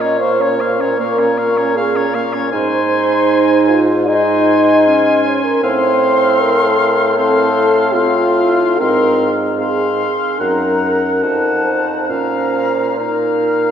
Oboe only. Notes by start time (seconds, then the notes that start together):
0.01 C#5
0.22 F5
0.42 C#5
0.61 F5
0.81 C#5
1.00 F5
1.19 C#5
1.38 F5
1.57 C#5
1.77 F5
1.96 C#5
2.15 F5
2.33 C#5
2.52 G#5
4.09 G#5
5.63 F5
7.18 F5
7.95 F5
8.80 F5
9.60 F5
10.40 F#5
11.23 F#5
12.10 F5
12.98 F5